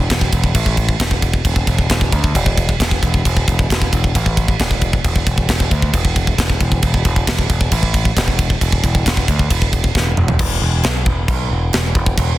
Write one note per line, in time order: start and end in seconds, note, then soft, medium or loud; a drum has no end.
0.10 0.30 E1 medium
0.10 kick medium
0.10 snare loud
0.10 crash medium
0.21 kick medium
0.33 0.52 E1 medium
0.33 kick medium
0.33 crash medium
0.44 kick medium
0.55 0.94 A1 loud
0.55 kick medium
0.55 crash medium
0.66 kick medium
0.77 kick medium
0.77 crash medium
0.89 kick medium
1.00 1.39 E1 medium
1.00 kick medium
1.00 snare loud
1.00 crash medium
1.11 kick medium
1.22 kick medium
1.22 crash medium
1.34 kick medium
1.45 1.65 E1 loud
1.45 kick medium
1.45 crash medium
1.56 kick medium
1.67 1.87 E1 medium
1.67 kick medium
1.67 crash medium
1.78 kick medium
1.90 2.10 E1 medium
1.90 kick medium
1.90 snare loud
1.90 crash medium
2.01 kick medium
2.12 2.32 D2 medium
2.12 kick medium
2.12 crash medium
2.24 kick medium
2.35 2.74 E1 loud
2.35 kick medium
2.35 crash medium
2.46 kick medium
2.58 kick medium
2.58 crash medium
2.69 kick medium
2.80 3.00 E1 medium
2.80 kick medium
2.80 snare loud
2.80 crash medium
2.91 kick medium
3.03 3.22 E1 medium
3.03 kick medium
3.03 crash medium
3.14 kick medium
3.25 3.45 E1 loud
3.25 kick medium
3.25 crash medium
3.37 kick medium
3.48 3.67 E1 medium
3.48 kick medium
3.48 crash medium
3.59 kick medium
3.70 3.90 E1 medium
3.70 kick medium
3.70 snare loud
3.70 crash medium
3.82 kick medium
3.93 4.12 E1 medium
3.93 kick medium
3.93 crash medium
4.04 kick medium
4.15 4.54 A1 loud
4.15 kick medium
4.15 crash medium
4.26 kick medium
4.37 kick medium
4.37 crash medium
4.48 kick medium
4.59 4.99 E1 medium
4.59 kick medium
4.59 snare loud
4.59 crash medium
4.71 kick medium
4.81 kick medium
4.81 crash medium
4.93 kick medium
5.04 5.24 E1 loud
5.04 kick medium
5.04 crash medium
5.16 kick medium
5.26 5.46 E1 medium
5.26 kick medium
5.26 crash medium
5.38 kick medium
5.49 5.68 E1 medium
5.49 kick medium
5.49 snare loud
5.49 crash medium
5.60 kick medium
5.71 5.91 D2 medium
5.71 kick medium
5.71 crash medium
5.82 kick medium
5.94 6.33 E1 loud
5.94 kick medium
5.94 crash medium
6.05 kick medium
6.16 kick medium
6.16 crash medium
6.27 kick medium
6.38 6.58 E1 medium
6.38 kick medium
6.38 snare loud
6.38 crash medium
6.50 kick medium
6.60 6.80 E1 medium
6.60 kick medium
6.60 crash medium
6.72 kick medium
6.82 7.03 E1 loud
6.82 kick medium
6.82 crash medium
6.94 kick medium
7.05 7.25 E1 loud
7.05 kick medium
7.05 crash medium
7.16 kick medium
7.27 7.47 E1 loud
7.27 kick medium
7.27 snare loud
7.27 crash medium
7.39 kick medium
7.50 7.69 E1 medium
7.50 kick medium
7.50 crash medium
7.61 kick medium
7.72 8.11 A1 loud
7.72 kick medium
7.72 crash medium
7.83 kick medium
7.94 kick medium
7.94 crash medium
8.05 kick medium
8.17 8.56 E1 loud
8.17 kick medium
8.17 snare loud
8.17 crash medium
8.28 kick medium
8.39 kick medium
8.39 crash medium
8.50 kick medium
8.61 8.81 E1 medium
8.61 kick medium
8.61 crash medium
8.72 kick medium
8.84 9.03 E1 medium
8.84 kick medium
8.84 crash medium
8.95 kick medium
9.06 9.25 E1 medium
9.06 kick medium
9.06 snare loud
9.06 crash medium
9.17 kick medium
9.28 9.48 D2 medium
9.28 kick medium
9.28 crash medium
9.39 kick medium
9.50 9.89 E1 medium
9.50 kick medium
9.50 crash medium
9.62 kick medium
9.73 kick medium
9.73 crash medium
9.84 kick medium
9.95 10.14 E1 medium
9.95 kick medium
9.95 snare medium
10.17 10.37 E1 medium
10.17 mid tom medium
10.28 floor tom loud
10.39 10.60 E1 loud
10.39 kick loud
10.39 crash loud
10.39 china medium
10.62 10.83 E1 loud
10.84 11.05 B1 medium
10.84 snare loud
10.84 china medium
11.06 11.27 E1 medium
11.06 kick medium
11.28 11.49 B1 loud
11.28 kick loud
11.28 china medium
11.51 11.72 E1 medium
11.73 11.94 E1 medium
11.73 snare loud
11.73 china medium
11.95 12.16 E1 medium
11.95 kick medium
12.06 kick medium
12.18 12.38 E1 loud
12.18 kick loud
12.18 china medium